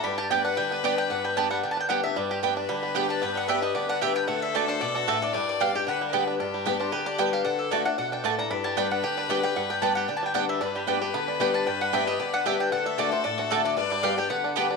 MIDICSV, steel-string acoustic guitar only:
0, 0, Header, 1, 2, 480
1, 0, Start_track
1, 0, Key_signature, 1, "major"
1, 0, Tempo, 264085
1, 75, Time_signature, 4, 2, 24, 8
1, 26839, End_track
2, 0, Start_track
2, 0, Title_t, "Steel-string acoustic guitar"
2, 0, Program_c, 0, 25
2, 81, Note_on_c, 0, 43, 95
2, 559, Note_on_c, 0, 55, 58
2, 577, Note_on_c, 0, 59, 70
2, 587, Note_on_c, 0, 62, 61
2, 594, Note_on_c, 0, 67, 72
2, 998, Note_off_c, 0, 43, 0
2, 1018, Note_off_c, 0, 55, 0
2, 1027, Note_off_c, 0, 59, 0
2, 1032, Note_off_c, 0, 62, 0
2, 1035, Note_off_c, 0, 67, 0
2, 1047, Note_on_c, 0, 50, 82
2, 1511, Note_on_c, 0, 55, 58
2, 1524, Note_on_c, 0, 59, 64
2, 1538, Note_on_c, 0, 62, 61
2, 1546, Note_on_c, 0, 67, 57
2, 1964, Note_off_c, 0, 50, 0
2, 1977, Note_off_c, 0, 55, 0
2, 1983, Note_off_c, 0, 59, 0
2, 1990, Note_off_c, 0, 62, 0
2, 1994, Note_off_c, 0, 67, 0
2, 2001, Note_on_c, 0, 43, 86
2, 2485, Note_on_c, 0, 55, 59
2, 2497, Note_on_c, 0, 59, 66
2, 2504, Note_on_c, 0, 62, 65
2, 2516, Note_on_c, 0, 67, 69
2, 2923, Note_off_c, 0, 43, 0
2, 2946, Note_off_c, 0, 55, 0
2, 2952, Note_off_c, 0, 59, 0
2, 2955, Note_off_c, 0, 62, 0
2, 2961, Note_off_c, 0, 67, 0
2, 2969, Note_on_c, 0, 50, 75
2, 3447, Note_on_c, 0, 55, 55
2, 3458, Note_on_c, 0, 59, 62
2, 3467, Note_on_c, 0, 62, 56
2, 3479, Note_on_c, 0, 67, 61
2, 3694, Note_off_c, 0, 67, 0
2, 3698, Note_off_c, 0, 55, 0
2, 3703, Note_off_c, 0, 59, 0
2, 3708, Note_off_c, 0, 62, 0
2, 3716, Note_on_c, 0, 67, 58
2, 3749, Note_on_c, 0, 62, 48
2, 3889, Note_off_c, 0, 50, 0
2, 3927, Note_off_c, 0, 67, 0
2, 3944, Note_off_c, 0, 62, 0
2, 3945, Note_on_c, 0, 43, 93
2, 4414, Note_on_c, 0, 55, 62
2, 4427, Note_on_c, 0, 59, 60
2, 4443, Note_on_c, 0, 62, 59
2, 4453, Note_on_c, 0, 67, 66
2, 4858, Note_off_c, 0, 43, 0
2, 4874, Note_off_c, 0, 55, 0
2, 4881, Note_off_c, 0, 59, 0
2, 4888, Note_off_c, 0, 62, 0
2, 4893, Note_off_c, 0, 67, 0
2, 4902, Note_on_c, 0, 50, 75
2, 5379, Note_on_c, 0, 55, 51
2, 5387, Note_on_c, 0, 59, 65
2, 5401, Note_on_c, 0, 62, 66
2, 5412, Note_on_c, 0, 67, 66
2, 5818, Note_off_c, 0, 50, 0
2, 5838, Note_off_c, 0, 55, 0
2, 5842, Note_off_c, 0, 59, 0
2, 5849, Note_off_c, 0, 62, 0
2, 5854, Note_off_c, 0, 67, 0
2, 5864, Note_on_c, 0, 43, 93
2, 6331, Note_on_c, 0, 55, 56
2, 6347, Note_on_c, 0, 59, 70
2, 6356, Note_on_c, 0, 62, 65
2, 6367, Note_on_c, 0, 67, 62
2, 6780, Note_off_c, 0, 43, 0
2, 6795, Note_off_c, 0, 55, 0
2, 6803, Note_off_c, 0, 59, 0
2, 6808, Note_off_c, 0, 62, 0
2, 6813, Note_off_c, 0, 67, 0
2, 6820, Note_on_c, 0, 50, 74
2, 7302, Note_on_c, 0, 55, 54
2, 7316, Note_on_c, 0, 59, 65
2, 7331, Note_on_c, 0, 62, 65
2, 7334, Note_on_c, 0, 67, 70
2, 7740, Note_off_c, 0, 50, 0
2, 7762, Note_off_c, 0, 55, 0
2, 7769, Note_off_c, 0, 59, 0
2, 7776, Note_off_c, 0, 62, 0
2, 7778, Note_off_c, 0, 67, 0
2, 7792, Note_on_c, 0, 50, 90
2, 8252, Note_off_c, 0, 50, 0
2, 8274, Note_on_c, 0, 50, 63
2, 8282, Note_on_c, 0, 57, 60
2, 8292, Note_on_c, 0, 62, 72
2, 8304, Note_on_c, 0, 66, 73
2, 8729, Note_off_c, 0, 50, 0
2, 8733, Note_off_c, 0, 57, 0
2, 8738, Note_off_c, 0, 62, 0
2, 8744, Note_off_c, 0, 66, 0
2, 8757, Note_on_c, 0, 47, 79
2, 9210, Note_off_c, 0, 47, 0
2, 9236, Note_on_c, 0, 45, 85
2, 9690, Note_off_c, 0, 45, 0
2, 9709, Note_on_c, 0, 43, 99
2, 10193, Note_on_c, 0, 55, 55
2, 10207, Note_on_c, 0, 59, 60
2, 10213, Note_on_c, 0, 62, 62
2, 10227, Note_on_c, 0, 67, 73
2, 10432, Note_off_c, 0, 67, 0
2, 10439, Note_off_c, 0, 55, 0
2, 10446, Note_off_c, 0, 59, 0
2, 10449, Note_off_c, 0, 62, 0
2, 10454, Note_on_c, 0, 67, 64
2, 10487, Note_on_c, 0, 62, 48
2, 10625, Note_off_c, 0, 43, 0
2, 10664, Note_off_c, 0, 67, 0
2, 10673, Note_on_c, 0, 50, 73
2, 10680, Note_off_c, 0, 62, 0
2, 11143, Note_on_c, 0, 55, 63
2, 11158, Note_on_c, 0, 59, 61
2, 11167, Note_on_c, 0, 62, 60
2, 11174, Note_on_c, 0, 67, 62
2, 11587, Note_off_c, 0, 50, 0
2, 11604, Note_off_c, 0, 55, 0
2, 11612, Note_off_c, 0, 59, 0
2, 11616, Note_off_c, 0, 62, 0
2, 11620, Note_off_c, 0, 67, 0
2, 11635, Note_on_c, 0, 43, 98
2, 12095, Note_on_c, 0, 55, 82
2, 12109, Note_on_c, 0, 59, 101
2, 12119, Note_on_c, 0, 62, 87
2, 12126, Note_on_c, 0, 67, 103
2, 12547, Note_off_c, 0, 43, 0
2, 12560, Note_off_c, 0, 55, 0
2, 12566, Note_off_c, 0, 59, 0
2, 12572, Note_off_c, 0, 62, 0
2, 12575, Note_off_c, 0, 67, 0
2, 12585, Note_on_c, 0, 50, 78
2, 13064, Note_on_c, 0, 55, 86
2, 13076, Note_on_c, 0, 59, 81
2, 13088, Note_on_c, 0, 62, 88
2, 13098, Note_on_c, 0, 67, 85
2, 13502, Note_off_c, 0, 50, 0
2, 13523, Note_off_c, 0, 55, 0
2, 13529, Note_off_c, 0, 59, 0
2, 13535, Note_off_c, 0, 62, 0
2, 13540, Note_off_c, 0, 67, 0
2, 13549, Note_on_c, 0, 50, 87
2, 13994, Note_off_c, 0, 50, 0
2, 14015, Note_on_c, 0, 50, 86
2, 14028, Note_on_c, 0, 57, 102
2, 14039, Note_on_c, 0, 62, 89
2, 14049, Note_on_c, 0, 66, 104
2, 14254, Note_off_c, 0, 66, 0
2, 14268, Note_off_c, 0, 50, 0
2, 14275, Note_off_c, 0, 57, 0
2, 14276, Note_on_c, 0, 66, 55
2, 14280, Note_off_c, 0, 62, 0
2, 14316, Note_on_c, 0, 62, 50
2, 14493, Note_off_c, 0, 66, 0
2, 14508, Note_on_c, 0, 47, 87
2, 14513, Note_off_c, 0, 62, 0
2, 14964, Note_off_c, 0, 47, 0
2, 14985, Note_on_c, 0, 45, 83
2, 15441, Note_off_c, 0, 45, 0
2, 15462, Note_on_c, 0, 43, 101
2, 15933, Note_on_c, 0, 55, 85
2, 15950, Note_on_c, 0, 59, 99
2, 15959, Note_on_c, 0, 62, 102
2, 15967, Note_on_c, 0, 67, 91
2, 16375, Note_off_c, 0, 43, 0
2, 16394, Note_off_c, 0, 55, 0
2, 16402, Note_off_c, 0, 59, 0
2, 16407, Note_off_c, 0, 62, 0
2, 16409, Note_on_c, 0, 50, 79
2, 16411, Note_off_c, 0, 67, 0
2, 16885, Note_on_c, 0, 55, 84
2, 16902, Note_on_c, 0, 59, 88
2, 16915, Note_on_c, 0, 62, 84
2, 16923, Note_on_c, 0, 67, 84
2, 17124, Note_off_c, 0, 67, 0
2, 17139, Note_off_c, 0, 55, 0
2, 17146, Note_on_c, 0, 67, 59
2, 17147, Note_off_c, 0, 59, 0
2, 17154, Note_off_c, 0, 62, 0
2, 17178, Note_on_c, 0, 62, 42
2, 17327, Note_off_c, 0, 50, 0
2, 17363, Note_off_c, 0, 67, 0
2, 17374, Note_on_c, 0, 43, 98
2, 17379, Note_off_c, 0, 62, 0
2, 17842, Note_on_c, 0, 55, 101
2, 17854, Note_on_c, 0, 59, 96
2, 17868, Note_on_c, 0, 62, 96
2, 17876, Note_on_c, 0, 67, 104
2, 18288, Note_off_c, 0, 43, 0
2, 18304, Note_off_c, 0, 55, 0
2, 18311, Note_off_c, 0, 59, 0
2, 18318, Note_off_c, 0, 62, 0
2, 18322, Note_off_c, 0, 67, 0
2, 18332, Note_on_c, 0, 50, 76
2, 18797, Note_on_c, 0, 55, 79
2, 18803, Note_on_c, 0, 59, 82
2, 18820, Note_on_c, 0, 62, 98
2, 18833, Note_on_c, 0, 67, 93
2, 19245, Note_off_c, 0, 50, 0
2, 19260, Note_off_c, 0, 55, 0
2, 19263, Note_off_c, 0, 59, 0
2, 19271, Note_off_c, 0, 62, 0
2, 19278, Note_off_c, 0, 67, 0
2, 19279, Note_on_c, 0, 43, 102
2, 19753, Note_on_c, 0, 55, 83
2, 19769, Note_on_c, 0, 59, 84
2, 19778, Note_on_c, 0, 62, 96
2, 19789, Note_on_c, 0, 67, 96
2, 19996, Note_off_c, 0, 67, 0
2, 20007, Note_off_c, 0, 55, 0
2, 20015, Note_off_c, 0, 59, 0
2, 20017, Note_on_c, 0, 67, 59
2, 20019, Note_off_c, 0, 62, 0
2, 20052, Note_on_c, 0, 62, 51
2, 20196, Note_off_c, 0, 43, 0
2, 20233, Note_off_c, 0, 67, 0
2, 20251, Note_off_c, 0, 62, 0
2, 20255, Note_on_c, 0, 50, 84
2, 20715, Note_on_c, 0, 55, 89
2, 20730, Note_on_c, 0, 59, 98
2, 20737, Note_on_c, 0, 62, 94
2, 20744, Note_on_c, 0, 67, 93
2, 21163, Note_off_c, 0, 50, 0
2, 21176, Note_off_c, 0, 55, 0
2, 21183, Note_off_c, 0, 59, 0
2, 21187, Note_off_c, 0, 62, 0
2, 21190, Note_off_c, 0, 67, 0
2, 21206, Note_on_c, 0, 43, 93
2, 21678, Note_on_c, 0, 55, 85
2, 21696, Note_on_c, 0, 59, 96
2, 21697, Note_on_c, 0, 62, 103
2, 21709, Note_on_c, 0, 67, 91
2, 21911, Note_off_c, 0, 67, 0
2, 21927, Note_off_c, 0, 55, 0
2, 21933, Note_on_c, 0, 67, 66
2, 21936, Note_off_c, 0, 59, 0
2, 21936, Note_off_c, 0, 62, 0
2, 21969, Note_on_c, 0, 62, 43
2, 22117, Note_off_c, 0, 43, 0
2, 22148, Note_off_c, 0, 67, 0
2, 22166, Note_off_c, 0, 62, 0
2, 22166, Note_on_c, 0, 50, 81
2, 22637, Note_on_c, 0, 55, 84
2, 22647, Note_on_c, 0, 59, 85
2, 22656, Note_on_c, 0, 62, 81
2, 22669, Note_on_c, 0, 67, 97
2, 23077, Note_off_c, 0, 50, 0
2, 23095, Note_off_c, 0, 55, 0
2, 23100, Note_off_c, 0, 59, 0
2, 23105, Note_off_c, 0, 62, 0
2, 23111, Note_off_c, 0, 67, 0
2, 23125, Note_on_c, 0, 50, 102
2, 23568, Note_off_c, 0, 50, 0
2, 23590, Note_on_c, 0, 50, 97
2, 23602, Note_on_c, 0, 57, 88
2, 23616, Note_on_c, 0, 62, 102
2, 23619, Note_on_c, 0, 66, 98
2, 23828, Note_off_c, 0, 66, 0
2, 23841, Note_off_c, 0, 50, 0
2, 23847, Note_off_c, 0, 57, 0
2, 23850, Note_on_c, 0, 66, 56
2, 23854, Note_off_c, 0, 62, 0
2, 23882, Note_on_c, 0, 62, 54
2, 24065, Note_off_c, 0, 66, 0
2, 24081, Note_off_c, 0, 62, 0
2, 24086, Note_on_c, 0, 45, 79
2, 24553, Note_on_c, 0, 50, 94
2, 24562, Note_on_c, 0, 57, 77
2, 24581, Note_on_c, 0, 62, 85
2, 24587, Note_on_c, 0, 66, 105
2, 24996, Note_off_c, 0, 45, 0
2, 25012, Note_off_c, 0, 50, 0
2, 25017, Note_off_c, 0, 57, 0
2, 25026, Note_off_c, 0, 62, 0
2, 25029, Note_off_c, 0, 66, 0
2, 25042, Note_on_c, 0, 43, 104
2, 25504, Note_on_c, 0, 55, 84
2, 25518, Note_on_c, 0, 59, 101
2, 25529, Note_on_c, 0, 62, 90
2, 25544, Note_on_c, 0, 67, 102
2, 25747, Note_off_c, 0, 67, 0
2, 25758, Note_off_c, 0, 55, 0
2, 25765, Note_off_c, 0, 59, 0
2, 25768, Note_on_c, 0, 67, 54
2, 25770, Note_off_c, 0, 62, 0
2, 25806, Note_on_c, 0, 62, 47
2, 25955, Note_off_c, 0, 43, 0
2, 25984, Note_off_c, 0, 67, 0
2, 25999, Note_on_c, 0, 50, 72
2, 26003, Note_off_c, 0, 62, 0
2, 26477, Note_on_c, 0, 55, 84
2, 26489, Note_on_c, 0, 59, 93
2, 26506, Note_on_c, 0, 62, 84
2, 26514, Note_on_c, 0, 67, 91
2, 26839, Note_off_c, 0, 50, 0
2, 26839, Note_off_c, 0, 55, 0
2, 26839, Note_off_c, 0, 59, 0
2, 26839, Note_off_c, 0, 62, 0
2, 26839, Note_off_c, 0, 67, 0
2, 26839, End_track
0, 0, End_of_file